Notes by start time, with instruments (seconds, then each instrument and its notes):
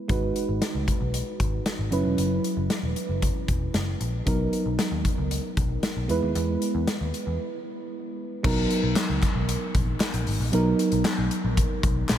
0.08 picked electric bass G#1, fm electric piano G#3 D#4 F#4 B4, kick, closed hi-hat
0.36 closed hi-hat
0.49 picked electric bass G#1
0.62 snare, closed hi-hat
0.75 picked electric bass C#2
0.88 kick, closed hi-hat
1.01 picked electric bass B1
1.14 closed hi-hat
1.40 picked electric bass G#1, kick, closed hi-hat
1.66 snare, closed hi-hat
1.79 picked electric bass G#1
1.91 picked electric bass F#1, fm electric piano F#3 C#4 E4 B4, closed hi-hat
2.05 picked electric bass E1
2.18 picked electric bass F#1, closed hi-hat
2.44 closed hi-hat
2.57 picked electric bass F#1
2.70 snare, closed hi-hat
2.83 picked electric bass E1
2.96 closed hi-hat
3.09 picked electric bass F#1
3.22 kick, closed hi-hat
3.48 picked electric bass E1, kick, closed hi-hat
3.74 picked electric bass F#1, snare, closed hi-hat
4.01 picked electric bass A#1, closed hi-hat
4.26 picked electric bass B1, fm electric piano F#3 B3 D#4 A#4, kick, closed hi-hat
4.53 closed hi-hat
4.66 picked electric bass B1
4.79 snare, closed hi-hat
4.92 picked electric bass D#2
5.05 kick, closed hi-hat
5.18 picked electric bass C#2
5.31 closed hi-hat
5.57 picked electric bass B1, kick, closed hi-hat
5.83 snare, closed hi-hat
5.97 picked electric bass B1
6.08 picked electric bass E2, fm electric piano G#3 B3 E4 B4, closed hi-hat
6.23 picked electric bass D#2
6.35 picked electric bass E2, closed hi-hat
6.62 closed hi-hat
6.75 picked electric bass E2
6.87 snare, closed hi-hat
7.01 picked electric bass D#2
7.14 closed hi-hat
7.27 picked electric bass E2
8.43 picked electric bass B1, fm electric piano F#3 B3 D#4 A#4, kick, crash
8.71 closed hi-hat
8.83 picked electric bass B1
8.96 snare, clap, closed hi-hat, tambourine
9.10 picked electric bass C#2
9.22 kick, clap, closed hi-hat
9.35 picked electric bass B1
9.49 closed hi-hat
9.75 picked electric bass A#1, kick, closed hi-hat
10.00 snare, clap, closed hi-hat, tambourine
10.14 picked electric bass A#1, closed hi-hat
10.27 picked electric bass G#1, open hi-hat
10.40 picked electric bass A#1
10.52 picked electric bass B1, fm electric piano F#3 B3 D#4 A#4, closed hi-hat
10.79 closed hi-hat
10.92 picked electric bass B1, closed hi-hat
11.05 snare, clap, closed hi-hat, tambourine
11.18 picked electric bass B1
11.31 closed hi-hat
11.44 picked electric bass A#1
11.57 kick, closed hi-hat
11.83 picked electric bass B1, kick, closed hi-hat
12.09 picked electric bass A#1, snare, clap, closed hi-hat, tambourine